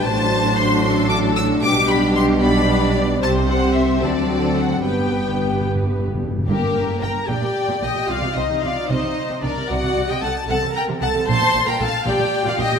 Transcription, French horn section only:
\new Staff \with { instrumentName = "French horn section" } { \clef bass \time 6/8 \key g \major \tempo 4. = 75 << { d'2.~ | d'2. | c'4. c'4. | b2~ b8 r8 |
\key c \dorian r2. | r2. | r2. | r2. | } \\ { fis2. | g2. | g4. fis4. | g2~ g8 r8 |
r2. | r2. | r2. | r2. | } >> }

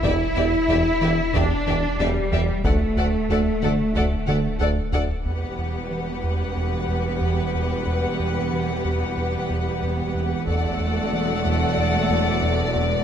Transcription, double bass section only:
\new Staff \with { instrumentName = "Double bass section" } { \clef bass \time 4/4 \key e \minor \tempo 4 = 92 e,8 e,8 e,8 e,8 e,8 e,8 e,8 e,8 | d,8 d,8 d,8 d,8 d,8 d,8 d,8 d,8 | e,,1~ | e,,1 |
e,,1 | }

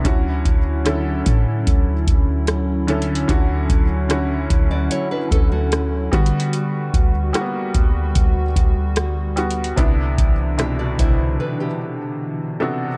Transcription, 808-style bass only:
\new Staff \with { instrumentName = "808-style bass" } { \clef bass \time 4/4 \key d \major \tempo 4 = 74 d,8 d,4 a,8 d,8 d,4. | d,8 d,4 d,8 r8 d,4 d8~ | d8 d,8 r8 d,8 d,8 d,4. | c,8 c,4 c,8 r2 | }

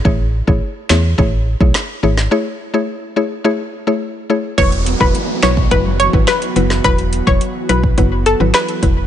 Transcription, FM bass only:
\new Staff \with { instrumentName = "FM bass" } { \clef bass \time 4/4 \key e \major \tempo 4 = 106 a,,8. a,,16 r8 e,8 a,,8. b,,16 r8 gis,,8 | r1 | e,,8. e,,16 r8 b,,8 fis,,8. gis,,16 r8 fis,,8 | e,,8. e,,16 r8 b,,8 fis,,8. gis,,16 r8 e,,8 | }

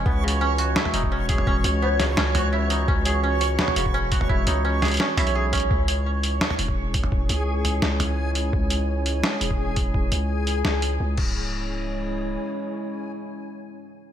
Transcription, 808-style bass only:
\new Staff \with { instrumentName = "808-style bass" } { \clef bass \time 4/4 \key cis \minor \tempo 4 = 170 cis,2 r8 e,,4.~ | e,,8 cis,4. cis,2 | cis,2 r8 e,,4.~ | e,,8 cis,4. r8 b,,4. |
cis,2 r8 e,,4.~ | e,,8 cis,4. cis,2 | cis,2 r8 e,,4.~ | e,,8 cis,4. cis,4 cis,8 cis,,8~ |
cis,,2. r4 | r1 | }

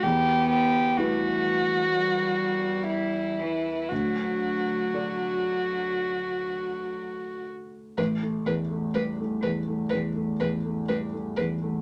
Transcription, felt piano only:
\new Staff \with { instrumentName = "Felt piano" } { \time 4/4 \key d \mixolydian \tempo 4 = 62 e,4 <g e' b'>2. | d,4 <a fis' d''>2. | a,,16 a16 e,16 a16 g16 a16 e,16 a16 e,16 a16 e,16 a16 g16 a16 e,16 a16 | }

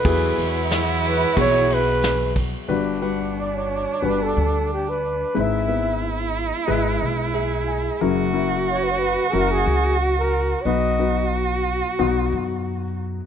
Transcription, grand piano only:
<<
  \new Staff \with { instrumentName = "Grand piano" } { \time 4/4 \key e \major \tempo 4 = 90 << { r1 | r1 | r2. e''8 gis''8 | r1 |
r1 | } \\ { <fis b e' gis'>4. r8 <fis b e' fis'>4. r8 | <g d' fis' b'>8 <g d' fis' b'>4 r8 <g d' fis' b'>4. r8 | <gis dis' e' b'>8 <gis b e' b'>4 r8 <gis e' b' dis''>4. r8 | <fis cis' e' ais'>8 <fis cis' e' ais'>4 r8 <fis cis' e' ais'>4. r8 |
<fis b dis' b'>8 <fis b dis' b'>4 r8 <fis b dis' fis'>4. r8 | } >> }
  \new Staff \with { instrumentName = "Grand piano" } { \clef bass \time 4/4 \key e \major e,1 | <g,, g,>1 | <gis,, gis,>1 | <fis,, fis,>1 |
<b,, b,>1 | }
>>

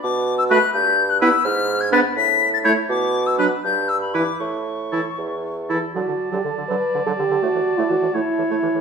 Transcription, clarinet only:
\new Staff \with { instrumentName = "Clarinet" } { \clef bass \time 6/8 \key d \major \tempo 4. = 82 r4 fis'16 r4 r16 e'16 r16 | r4 d'16 r4 r16 e'16 r16 | r4 d'16 r4 r16 e'16 r16 | r4 e'16 r4 r16 e'16 r16 |
fis16 d16 r16 fis16 d16 d16 fis16 r16 d16 fis16 d16 d16 | a16 e16 r16 a16 e16 e16 a16 r16 e16 a16 e16 e16 | }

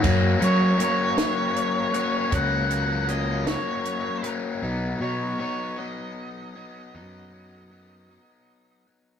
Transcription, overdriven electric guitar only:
\new Staff \with { instrumentName = "Overdriven electric guitar" } { \time 6/8 \key fis \major \tempo 4. = 52 <fis ais cis'>8 <fis ais cis'>8 <fis ais cis'>8 <fis ais cis'>4 <fis ais cis'>8 | <fis ais cis'>8 <fis ais cis'>8 <fis ais cis'>8 <fis ais cis'>4 <fis ais cis'>8 | <fis b dis'>8 <fis b dis'>8 <fis b dis'>8 <fis b dis'>4 <fis b dis'>8 | <fis b dis'>8 <fis b dis'>8 <fis b dis'>8 <fis b dis'>4 <fis b dis'>8 | }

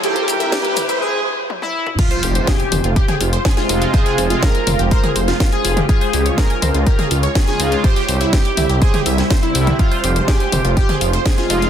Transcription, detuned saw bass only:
\new Staff \with { instrumentName = "Detuned saw bass" } { \clef bass \time 4/4 \key f \minor \tempo 4 = 123 r1 | r8 f,,16 r8. f,,16 f,,16 r8 f,,16 r8. f,,16 r16 | r8 f,,16 r8. f,,16 f,,16 r8 f,,16 r8. f,,16 r16 | r8 des,16 r8. des,16 des,16 r8 des,16 r8. des,16 r16 |
r8 c,16 r8. c,16 c,16 r8 c,16 r8. c,16 r16 | r8 f,,16 r8. f,,16 f,,16 r8 f,,16 r8. f,,16 r16 | }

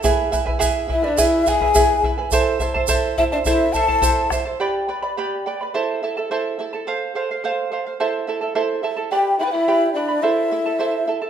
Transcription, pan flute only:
\new Staff \with { instrumentName = "Pan flute" } { \time 2/4 \key a \minor \tempo 4 = 106 r4. e'16 d'16 | e'8 gis'4 r8 | r4. e'16 d'16 | e'8 a'4 r8 |
\key g \mixolydian r2 | r2 | r2 | r2 |
g'8 e'32 b'32 e'8. d'8 | e'4. r8 | }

